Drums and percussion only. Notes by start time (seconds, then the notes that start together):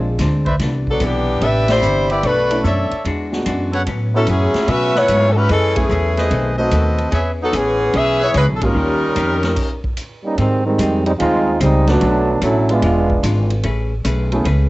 0.19 kick, snare, hi-hat pedal, ride
0.46 kick, ride
0.59 kick, snare, ride
0.87 kick
1.00 hi-hat pedal, ride
1.41 kick, ride
1.68 snare, ride
1.82 hi-hat pedal
2.10 ride
2.23 kick, ride
2.51 ride
2.64 kick, hi-hat pedal
2.91 ride
3.05 kick, ride
3.33 snare
3.46 kick, hi-hat pedal, ride
3.73 ride
3.87 kick, ride
4.27 kick, hi-hat pedal, ride
4.54 snare, ride
4.68 kick, ride
4.95 snare
5.08 kick, hi-hat pedal, ride
5.49 kick, ride
5.76 kick, ride
5.90 hi-hat pedal
6.17 snare, ride
6.31 kick, ride
6.71 kick, hi-hat pedal, ride
6.98 ride
7.12 kick, ride
7.53 kick, hi-hat pedal, ride
7.93 kick, ride
8.34 kick, hi-hat pedal, ride
8.61 kick, ride
9.16 kick, hi-hat pedal, ride
9.43 snare, ride
9.56 kick, crash, ride
9.84 kick
9.97 kick, hi-hat pedal, ride
10.38 kick, ride
10.79 kick, hi-hat pedal, ride
11.06 ride
11.20 kick, ride
11.61 kick, hi-hat pedal, ride
11.87 snare, ride
12.01 kick, ride
12.42 kick, hi-hat pedal, ride
12.69 ride
12.82 kick, ride
13.10 kick
13.23 hi-hat pedal, ride
13.50 ride
13.63 kick, ride
14.05 kick, hi-hat pedal, ride
14.32 ride
14.45 kick, ride